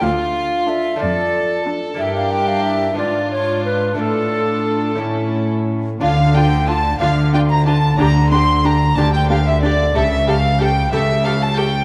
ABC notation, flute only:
X:1
M:6/8
L:1/16
Q:3/8=61
K:Dm
V:1 name="Flute"
f4 e2 d4 z2 | e f g f e2 d2 ^c2 =B2 | A6 z6 | f2 g2 a2 f2 g b a2 |
b2 c'2 b2 a g f e d2 | e2 f2 g2 e2 f a g2 |]